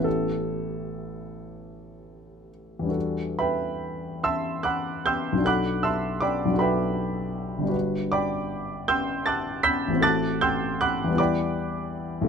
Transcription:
\new Staff \with { instrumentName = "Grand piano" } { \time 6/8 \key e \minor \tempo 4. = 52 << { a'2~ a'8 r8 | r8 <b' e'' g'' b''>4 <e'' a'' c''' e'''>8 <fis'' b'' d''' fis'''>8 <g'' c''' e''' g'''>8 | <fis'' b'' d''' fis'''>8 <e'' a'' c''' e'''>8 <d'' g'' b'' d'''>8 <b' e'' g'' b''>4. | r8 <d'' g'' b'' d'''>4 <g'' c''' e''' g'''>8 <a'' d''' fis''' a'''>8 <b'' e''' g''' b'''>8 |
<a'' d''' fis''' a'''>8 <g'' c''' e''' g'''>8 <fis'' b'' d''' fis'''>8 <d'' g'' b'' d'''>4. | } \\ { <a,, b cis' e' g'>2. | <e, g d' fis' a'>2. | <b,, fis d' fis' a'>4. <b,, fis d' fis' a'>4. | <g,, g d' fis' b'>2. |
<a,, e c' fis' a'>4. <e, g b e' b'>4. | } >> }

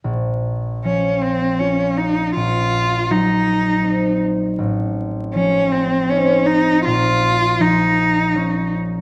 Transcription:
<<
  \new Staff \with { instrumentName = "Cello" } { \time 3/4 \key bes \minor \tempo 4 = 80 r4 des'8 c'8 des'8 ees'8 | f'4 ees'4. r8 | r4 des'8 c'8 des'8 ees'8 | f'4 ees'4. r8 | }
  \new Staff \with { instrumentName = "Harp" } { \clef bass \time 3/4 \key bes \minor bes,,4 f4 <des' f'>4 | bes,,4 ges4 <c' ees'>4 | a,,4 f4 <c' ees'>4 | bes,,4 f4 <bes des'>4 | }
>>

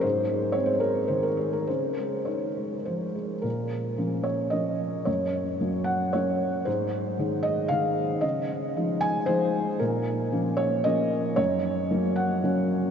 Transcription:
<<
  \new Staff \with { instrumentName = "Felt piano" } { \time 3/4 \key bes \minor \tempo 4 = 113 c''4 des''16 c''16 bes'8 c''16 bes'16 aes'16 bes'16 | c''4 des''4 c''4 | bes'4. des''8 ees''4 | des''4. ges''8 des''4 |
c''4. ees''8 f''4 | ees''4. aes''8 c''4 | bes'4. des''8 ees''4 | des''4. ges''8 r4 | }
  \new Staff \with { instrumentName = "Felt piano" } { \clef bass \time 3/4 \key bes \minor aes,8 aes8 c'8 aes8 ees8 aes8 | des8 aes8 ees'8 aes8 f8 aes8 | bes,4 <f bes des'>4 <f bes des'>4 | ges,4 <ges bes des'>4 <ges bes des'>4 |
aes,4 <ees aes ees'>4 <ees aes ees'>4 | des4 <f aes ees'>4 <f aes ees'>4 | bes,4 <f bes des'>4 <f bes des'>4 | ges,4 <ges bes des'>4 <ges bes des'>4 | }
>>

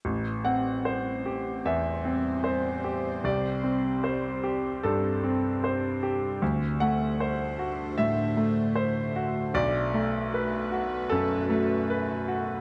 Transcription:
<<
  \new Staff \with { instrumentName = "Grand piano" } { \time 4/4 \key a \dorian \tempo 4 = 76 << { r8 fis''4. e''2 | d''2 a'4. r8 | r8 fis''4. e''2 | d''2 a'4. r8 | } \\ { a,,8 c'8 c''8 g'8 e,8 c'8 c''8 g'8 | c,8 c'8 c''8 g'8 g,8 c'8 c''8 g'8 | d,8 a8 c''8 fis'8 a,8 a8 c''8 fis'8 | b,,8 a8 b'8 fis'8 fis,8 a8 b'8 fis'8 | } >> }
  \new Staff \with { instrumentName = "Ambient pad" } { \time 4/4 \key a \dorian << { <c' c''>1~ | <c' c''>1 | <d' c''>1 | <fis' b'>1 | } \\ { g1~ | g1 | a1~ | a1 | } >> }
>>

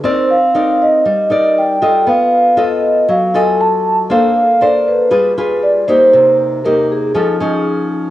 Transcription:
<<
  \new Staff \with { instrumentName = "Vibraphone" } { \time 4/4 \key c \dorian \tempo 4 = 118 c''8 f''4 ees''4. g''4 | eis''4 dis''4 eis''8 aes''8 a''8. r16 | f''4 d''8 ces''4 r8 d''8 c''8~ | c''8 r8 bes'8 aes'2 r8 | }
  \new Staff \with { instrumentName = "Nylon-string guitar" } { \time 4/4 \key c \dorian << { <ees' bes' d''>8 r8 <ees' bes' d''>4 r8 <ees' bes' d''>4 <f' a' ees''>8~ | <f' a' ees''>4 <eis' a' dis''>4 r8 <eis' a' dis''>4. | <d' a' c''>8 r8 <d' a' c''>4 <f' aes' b'>8 <f' aes' b'>4 <bes ees' g'>8~ | <bes ees' g'>4 <bes ees' g'>4 <cis' ees' a'>8 <cis' ees'>4. | } \\ { c'2 g2 | b2 fis2 | bes2 g2 | c2 f2 | } >> }
>>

